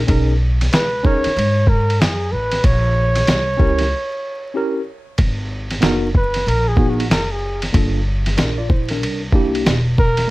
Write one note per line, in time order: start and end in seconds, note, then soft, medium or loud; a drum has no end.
0.07 0.69 B1 loud
0.07 0.33 C#4 medium
0.07 0.33 D#4 medium
0.07 0.34 G#4 medium
0.07 0.35 A#4 medium
0.07 kick loud
0.07 ride medium
0.61 snare soft
0.61 ride medium
0.73 1.07 B4 loud
0.73 snare loud
0.73 hi-hat pedal medium
0.73 ride medium
1.03 1.29 C#4 medium
1.03 1.29 D#4 medium
1.03 1.30 G#4 medium
1.03 1.30 A#4 medium
1.03 1.70 C#5 loud
1.03 kick medium
1.24 muted upright bass stroke medium
1.24 snare soft
1.24 ride medium
1.37 1.97 G#2 loud
1.37 ride medium
1.67 2.02 A#4 loud
1.67 kick medium
1.90 ride medium
2.00 2.31 F#2 medium
2.00 2.33 G#4 medium
2.00 snare loud
2.00 hi-hat pedal medium
2.00 ride medium
2.32 2.62 A1 medium
2.32 2.67 B4 medium
2.51 snare soft
2.51 ride medium
2.64 3.25 A#1 loud
2.64 4.88 C#5 loud
2.64 kick loud
2.64 ride medium
3.16 snare soft
3.16 ride medium
3.27 3.58 C2 medium
3.27 snare loud
3.27 hi-hat pedal soft
3.27 ride medium
3.57 3.91 C#2 medium
3.57 3.83 C#4 medium
3.57 3.84 E4 medium
3.57 3.85 G4 medium
3.57 3.85 A#4 medium
3.57 kick loud
3.79 snare soft
3.79 ride medium
4.54 4.80 C#4 medium
4.54 4.80 E4 medium
4.54 4.80 G4 medium
4.54 4.81 A#4 medium
5.18 5.79 G#1 loud
5.18 kick loud
5.18 ride medium
5.70 snare soft
5.70 ride medium
5.81 6.43 F#1 medium
5.81 6.07 B3 medium
5.81 6.07 D#4 medium
5.81 6.08 F#4 medium
5.81 6.08 A#4 medium
5.81 snare loud
5.81 hi-hat pedal medium
5.81 ride medium
6.15 6.49 B4 loud
6.15 kick loud
6.34 snare soft
6.34 ride medium
6.47 7.07 A#1 medium
6.47 6.69 A#4 loud
6.47 ride medium
6.68 6.91 G#4 loud
6.76 7.03 B3 medium
6.76 7.03 D#4 medium
6.76 7.04 F#4 medium
6.76 7.04 G#4 medium
6.76 kick medium
6.89 7.10 F#4 medium
7.00 ride medium
7.10 7.71 F#1 medium
7.10 7.33 A#4 medium
7.10 snare loud
7.10 hi-hat pedal medium
7.10 ride medium
7.32 7.63 G#4 medium
7.62 snare soft
7.62 ride medium
7.73 8.35 G1 loud
7.73 7.98 A#3 medium
7.73 7.99 D4 medium
7.73 8.00 F4 medium
7.73 8.00 A4 medium
7.73 kick loud
7.73 ride medium
8.26 snare soft
8.26 ride medium
8.37 9.02 A#1 medium
8.37 8.58 D4 medium
8.37 8.57 A#4 medium
8.37 snare loud
8.37 hi-hat pedal medium
8.37 ride medium
8.58 8.69 F4 medium
8.58 8.69 D5 medium
8.69 8.89 E4 medium
8.69 8.89 C5 medium
8.69 kick loud
8.89 9.21 D4 medium
8.89 9.21 A#4 medium
8.89 snare soft
8.89 ride medium
9.02 9.62 C2 loud
9.02 ride medium
9.32 9.73 A#3 medium
9.32 9.74 D4 medium
9.32 9.74 E4 medium
9.32 9.75 G4 medium
9.32 kick medium
9.55 ride medium
9.66 10.26 E1 medium
9.66 snare loud
9.66 hi-hat pedal medium
9.66 ride medium
9.98 10.30 A#4 loud
9.98 kick medium
10.17 snare soft
10.17 ride medium